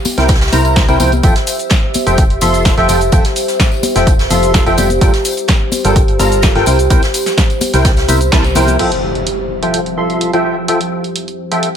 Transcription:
Already playing: G4 C5 E5
0.05 closed hi-hat, open hi-hat, tambourine, high conga
0.18 C2 C3 E4 A#4 C5 G5, snare, closed hi-hat, tambourine
0.28 kick, snare, closed hi-hat, tambourine
0.35 snare, closed hi-hat
0.41 snare, closed hi-hat, tambourine
0.47 snare, closed hi-hat
0.52 C2 C3 E4 A#4 C5 A#5, closed hi-hat, open hi-hat, tambourine, high conga
0.65 closed hi-hat, tambourine
0.76 kick, snare, closed hi-hat, tambourine
0.89 C2 C3 E4 A#4 C5 G5, closed hi-hat, tambourine
1.00 C2 F3 E4 A#4 C5 G5, closed hi-hat, open hi-hat, tambourine, high conga
1.12 closed hi-hat, tambourine, high conga
1.23 F1 F3 F4 A4 E5 G5, kick, closed hi-hat, tambourine, cabasa
1.36 snare, closed hi-hat, tambourine
1.47 closed hi-hat, open hi-hat, tambourine, cabasa
1.59 closed hi-hat, tambourine, cabasa
1.70 kick, snare, closed hi-hat, tambourine, cabasa
1.94 closed hi-hat, open hi-hat, tambourine, high conga, cabasa
2.06 F1 F3 F4 A4 E5 G5, closed hi-hat, tambourine, cabasa
2.18 kick, closed hi-hat, tambourine, cabasa
2.30 closed hi-hat
2.41 F1 F3 F4 A4 E5 C6, closed hi-hat, open hi-hat, tambourine, high conga, cabasa
2.54 closed hi-hat, tambourine, cabasa
2.65 kick, snare, closed hi-hat, tambourine, cabasa
2.77 F1 F3 F4 A4 E5 G5, snare, closed hi-hat
2.89 F1 F3 F4 A4 E5 G5, closed hi-hat, open hi-hat, tambourine, cabasa
3.01 closed hi-hat, tambourine, cabasa
3.12 F1 F3 F4 A4 E5 G5, kick, closed hi-hat, tambourine, cabasa
3.24 snare, closed hi-hat, tambourine
3.36 closed hi-hat, open hi-hat, tambourine, cabasa
3.48 snare, closed hi-hat, tambourine, cabasa
3.60 kick, snare, closed hi-hat, tambourine, cabasa
3.72 tambourine
3.83 closed hi-hat, open hi-hat, tambourine, high conga, cabasa
3.96 F1 F3 F4 A4 E5 G5, snare, closed hi-hat, tambourine, cabasa
4.07 kick, closed hi-hat, tambourine, cabasa
4.19 snare, closed hi-hat, tambourine
4.30 F1 F3 F4 A4 E5 C6, closed hi-hat, open hi-hat, tambourine, high conga, cabasa
4.42 closed hi-hat, tambourine, cabasa
4.54 kick, snare, closed hi-hat, tambourine, cabasa
4.66 F1 F3 F4 A4 E5 G5, closed hi-hat, tambourine
4.78 F1 G3 F4 A4 E5 G5, closed hi-hat, open hi-hat, tambourine, high conga, cabasa
4.90 closed hi-hat, tambourine, high conga, cabasa
5.01 G1 G3 F4 A4 A#4 G5, kick, closed hi-hat, tambourine, cabasa
5.14 snare, closed hi-hat, tambourine
5.25 closed hi-hat, open hi-hat, tambourine, cabasa
5.37 closed hi-hat, tambourine, cabasa
5.48 kick, snare, closed hi-hat, tambourine, cabasa
5.72 closed hi-hat, open hi-hat, tambourine, high conga, cabasa
5.84 G1 G3 F4 A4 A#4 G5, closed hi-hat, tambourine, cabasa
5.96 kick, closed hi-hat, tambourine, cabasa
6.08 closed hi-hat
6.19 G1 G3 F4 A4 A#4 A#5, closed hi-hat, open hi-hat, tambourine, high conga, cabasa
6.32 closed hi-hat, tambourine, cabasa
6.42 kick, snare, closed hi-hat, tambourine, cabasa
6.55 G1 F4 A4 A#4 G5, snare, closed hi-hat
6.66 C2 C3 E4 A#4 C5 G5, closed hi-hat, open hi-hat, tambourine, cabasa
6.79 closed hi-hat, tambourine, cabasa
6.90 C2 C3 E4 A#4 C5 G5, kick, closed hi-hat, tambourine, cabasa
7.02 snare, closed hi-hat, tambourine
7.14 closed hi-hat, open hi-hat, tambourine, cabasa
7.26 snare, closed hi-hat, tambourine, cabasa
7.38 E5, kick, snare, closed hi-hat, tambourine, cabasa
7.50 closed hi-hat, tambourine
7.61 closed hi-hat, open hi-hat, tambourine, high conga, cabasa
7.74 C2 C3 E4 A#4 C5 G5, snare, closed hi-hat, tambourine, cabasa
7.85 kick, snare, closed hi-hat, tambourine, cabasa
7.97 snare, closed hi-hat, tambourine
8.08 C2 C3 E4 A#4 C5 E5, closed hi-hat, open hi-hat, tambourine, high conga, cabasa
8.21 closed hi-hat, tambourine, cabasa
8.32 C2 C3 E4 A#4 C5 A5, kick, snare, closed hi-hat, tambourine, cabasa
8.44 closed hi-hat, tambourine
8.55 C2 F3 E4 A#4 C5 G5, open hi-hat, tambourine, high conga, cabasa
8.67 closed hi-hat, tambourine, high conga, cabasa
8.79 F3 F4 A4 E5 G5, closed hi-hat, crash, impact
8.92 closed hi-hat
9.15 closed hi-hat
9.27 closed hi-hat
9.63 F3 F4 A4 E5 G5, closed hi-hat
9.74 closed hi-hat
9.86 closed hi-hat
9.97 F3 F4 A4 E5 C6
10.10 closed hi-hat
10.21 closed hi-hat
10.33 F3 F4 A4 E5 G5, closed hi-hat
10.45 F3 F4 A4 E5 G5
10.68 F3 F4 A4 E5 G5, closed hi-hat
10.81 closed hi-hat
11.04 closed hi-hat
11.16 closed hi-hat
11.28 closed hi-hat
11.52 F3 F4 A4 E5 G5, closed hi-hat
11.63 closed hi-hat

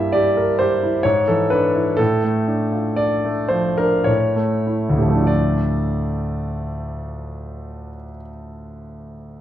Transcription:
Already playing: G2 G3 A#3 E4 E5
0.12 G4 D5
0.37 A#4
0.59 G4 C5
0.83 E4
1.03 G#2 C#5
1.28 E3 A4
1.50 D4 B4
1.75 E4
1.97 A2 A4
2.24 A3
2.48 D4
2.72 F4
2.96 D4 D5
3.25 A3
3.48 F3 C5
3.78 D4 A#4
4.04 A2 C#5
4.36 A3
4.67 E4
4.89 D2
4.96 A2 G4
5.02 F3
5.09 A3
5.15 D4
5.22 F4
5.27 D5

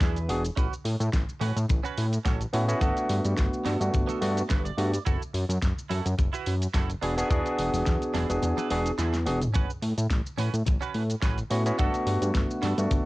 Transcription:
0.01 E2 D4 E4 G#4 B4, kick, snare, closed hi-hat, shaker
0.16 closed hi-hat, shaker
0.29 E1 B3 D4 F#4 G#4, muted clean electric guitar stroke, open hi-hat
0.45 closed hi-hat, shaker
0.56 A1 C#4 F#4 B4, kick, closed hi-hat, shaker
0.73 shaker
0.84 A2, muted clean electric guitar stroke, open hi-hat
1.00 A2, closed hi-hat, shaker
1.13 A1, kick, snare, closed hi-hat, shaker
1.29 shaker
1.41 A2 C#4 F#4 B4, open hi-hat, high conga
1.56 A2, closed hi-hat, shaker
1.68 A1, muted clean electric guitar stroke, kick, closed hi-hat, low conga, shaker
1.83 C#4 F#4 B4, closed hi-hat, shaker
1.97 A2, open hi-hat
2.13 closed hi-hat, shaker
2.25 A1 C#4 F#4 A4, kick, snare, closed hi-hat, shaker
2.41 closed hi-hat, shaker
2.53 A2 B3 C#4 E4 F#4, muted clean electric guitar stroke, open hi-hat
2.68 B3 C#4 E4 F#4, closed hi-hat, shaker
2.81 G1 A3 B3 D4 F#4 A4, kick, closed hi-hat, shaker
2.97 closed hi-hat, shaker
3.09 G2, muted clean electric guitar stroke, open hi-hat
3.25 G2, closed hi-hat, shaker
3.37 G1, kick, snare, closed hi-hat, shaker
3.54 shaker
3.65 G2 B3 F#4 A4, snare, open hi-hat, high conga
3.80 G2 A3 B3 D4 F#4, closed hi-hat, shaker
3.93 G1, muted clean electric guitar stroke, kick, closed hi-hat, low conga, shaker
4.07 B3 F#4 A4, closed hi-hat, high conga, shaker
4.21 G2 A3 B3 D4 F#4, open hi-hat, high conga
4.37 closed hi-hat, shaker
4.49 G1 B3 F#4 B4, kick, snare, closed hi-hat, shaker
4.65 D5, closed hi-hat, shaker
4.77 G2 A3 B3 D4 F#4, muted clean electric guitar stroke, open hi-hat
4.93 closed hi-hat, shaker
5.05 F#1 E4 F#4 A4, kick, closed hi-hat, shaker
5.22 shaker
5.33 F#2, muted clean electric guitar stroke, open hi-hat
5.49 F#2, closed hi-hat, shaker
5.62 F#1, kick, snare, closed hi-hat, shaker
5.78 shaker
5.89 F#2 E4 F#4 A4, open hi-hat, high conga
6.06 F#2, closed hi-hat, shaker
6.18 F#1, muted clean electric guitar stroke, kick, closed hi-hat, low conga, shaker
6.33 E4 F#4 B4, closed hi-hat, shaker
6.46 F#2, open hi-hat
6.62 closed hi-hat, shaker
6.74 F#1 E4 F#4 A4, kick, snare, closed hi-hat, shaker
6.90 closed hi-hat, shaker
7.01 E1 B3 D4 E4 F#4 G#4, open hi-hat
7.17 B3 D4 F#4 G#4, closed hi-hat, shaker
7.29 E2 B3 D4 F#4 G#4, kick, closed hi-hat, shaker
7.46 closed hi-hat, shaker
7.57 E1, muted clean electric guitar stroke, open hi-hat
7.73 E1, open hi-hat, low conga, shaker
7.86 E2, kick, snare, closed hi-hat, shaker
8.02 closed hi-hat, shaker
8.14 E1 D4 E4 G#4, snare, open hi-hat, high conga
8.29 E1 B3 D4 F#4 G#4, closed hi-hat, shaker
8.42 E2, muted clean electric guitar stroke, closed hi-hat, low conga, shaker
8.57 D4 E4 B4, closed hi-hat, high conga, shaker
8.70 E1 B3 D4 F#4 G#4, open hi-hat, high conga
8.86 closed hi-hat, shaker
8.98 E2 D4 E4 G#4, snare, closed hi-hat, shaker
9.14 snare, closed hi-hat, shaker
9.26 E1 B3 D4 F#4 G#4, muted clean electric guitar stroke, open hi-hat
9.42 closed hi-hat, mid tom, shaker
9.54 A1 C#4 F#4 B4, kick, closed hi-hat, shaker
9.70 shaker
9.82 A2, muted clean electric guitar stroke, open hi-hat
9.98 A2, closed hi-hat, shaker
10.10 A1, kick, snare, closed hi-hat, shaker
10.26 shaker
10.38 A2 C#4 F#4 B4, open hi-hat, high conga
10.54 A2, closed hi-hat, shaker
10.66 A1, muted clean electric guitar stroke, kick, closed hi-hat, low conga, shaker
10.81 C#4 F#4 B4, closed hi-hat, shaker
10.95 A2, open hi-hat
11.10 closed hi-hat, shaker
11.22 A1 C#4 F#4 B4, kick, snare, closed hi-hat, shaker
11.38 closed hi-hat, shaker
11.50 A2 B3 C#4 E4 F#4, muted clean electric guitar stroke, open hi-hat
11.66 B3 C#4 E4 F#4, closed hi-hat, shaker
11.78 G1 A3 B3 D4 F#4 A4, kick, closed hi-hat, shaker
11.94 closed hi-hat, shaker
12.06 G2, muted clean electric guitar stroke, open hi-hat
12.22 G2, closed hi-hat, shaker
12.35 G1, kick, snare, closed hi-hat, shaker
12.51 shaker
12.62 G2 B3 F#4 A4, snare, open hi-hat, high conga
12.78 G2 A3 B3 D4 F#4, closed hi-hat, shaker
12.90 G1, muted clean electric guitar stroke, kick, closed hi-hat, low conga, shaker

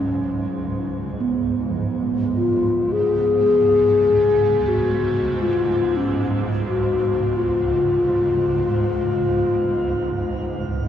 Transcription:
Already playing: C#2 G#2 F#3 C#4
1.16 C#2 G#2
1.20 B3
1.69 F3
2.36 F4
2.92 G#4
4.68 F#4
5.42 F4
5.97 C#4
6.66 F#4
7.37 F4

